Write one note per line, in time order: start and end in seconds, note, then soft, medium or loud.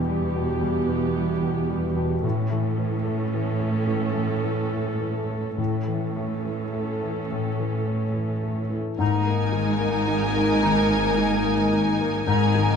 0.00 0.60 E2 soft
0.00 2.20 E2 medium
0.00 0.36 B2 soft
0.00 0.61 E3 medium
0.00 0.09 G3 soft
0.00 0.88 B3 soft
0.00 2.20 B3 medium
0.00 1.15 E4 soft
0.00 0.34 G4 soft
0.00 2.20 G4 medium
0.08 0.52 G3 soft
0.08 1.68 B4 soft
0.36 0.79 B2 soft
0.36 1.41 G4 soft
0.61 2.27 E3 soft
0.61 1.05 G3 soft
0.89 1.32 B2 soft
0.89 2.27 B3 soft
1.16 1.60 G3 soft
1.16 3.04 E4 soft
1.42 1.86 B2 soft
1.42 1.96 G4 soft
1.70 2.13 G3 soft
1.70 2.27 B4 soft
1.96 2.24 B2 soft
1.96 2.27 G4 soft
2.23 5.57 A2 medium
2.23 3.87 A2 soft
2.23 3.85 A2 soft
2.23 5.54 C#4 medium
2.23 5.55 A4 soft
2.50 4.15 E3 soft
2.50 2.94 A3 soft
2.78 3.22 E3 soft
2.78 4.43 C#4 soft
3.05 3.49 A3 soft
3.05 3.58 E4 soft
3.33 3.78 E3 soft
3.33 4.99 A4 soft
3.60 4.05 A3 soft
3.60 4.71 E4 soft
3.87 5.57 A2 soft
3.87 4.33 E3 soft
4.15 5.86 E3 soft
4.15 4.61 A3 soft
4.43 4.89 E3 soft
4.43 6.15 C#4 soft
4.72 5.18 A3 soft
4.72 5.28 E4 soft
5.00 5.47 E3 soft
5.00 6.72 A4 soft
5.29 5.77 A3 soft
5.29 6.44 E4 soft
5.58 7.27 A2 soft
5.58 7.30 A2 soft
5.58 8.76 A2 soft
5.58 8.76 C#4 soft
5.58 8.76 A4 soft
5.87 7.58 E3 soft
5.87 6.34 E3 soft
6.16 6.63 A3 soft
6.16 7.86 C#4 soft
6.45 6.91 E3 soft
6.45 7.01 E4 soft
6.73 7.19 A3 soft
6.73 8.43 A4 soft
7.02 7.48 E3 soft
7.02 8.15 E4 soft
7.31 9.03 A2 soft
7.31 7.77 A3 soft
7.59 9.04 E3 soft
7.59 8.05 E3 soft
7.87 8.32 A3 soft
7.87 9.04 C#4 soft
8.14 8.60 E3 soft
8.14 8.71 E4 soft
8.43 8.89 A3 soft
8.43 9.04 A4 soft
8.70 8.99 E3 soft
8.70 9.04 E4 soft
8.98 12.23 G#1 soft
8.98 10.59 G#2 soft
8.98 12.23 G#2 medium
8.98 12.26 G#2 medium
8.98 12.23 A#3 soft
8.98 12.22 D#4 soft
8.98 12.23 D#4 soft
8.98 9.31 D#4 soft
8.98 12.23 A#4 medium
8.98 12.24 G#5 soft
8.98 9.38 A#5 medium
9.26 9.71 A#3 soft
9.42 10.22 D#4 soft
9.52 9.97 D#3 soft
9.80 10.25 A#3 soft
9.80 11.44 A#4 soft
10.07 10.52 D#3 soft
10.23 11.03 D#4 soft
10.35 10.79 A#3 soft
10.63 11.07 D#3 soft
10.63 12.67 D#3 soft
10.63 10.94 D#4 soft
10.63 11.01 A#5 medium
10.91 11.34 A#3 soft
11.04 11.86 D#4 soft
11.18 11.62 D#3 soft
11.44 11.89 A#3 soft
11.44 12.76 A#4 soft
11.73 12.17 D#3 soft
11.87 12.76 D#4 soft
12.01 12.44 A#3 soft
12.25 12.76 G#1 medium
12.25 12.76 G#2 medium
12.25 12.76 G#2 soft
12.25 12.76 G#2 medium
12.25 12.76 A#3 medium
12.25 12.76 D#4 medium
12.25 12.57 D#4 medium
12.25 12.76 D#4 soft
12.25 12.76 A#4 medium
12.25 12.76 G#5 medium
12.25 12.65 A#5 medium
12.55 12.76 D#3 soft
12.69 12.76 D#3 soft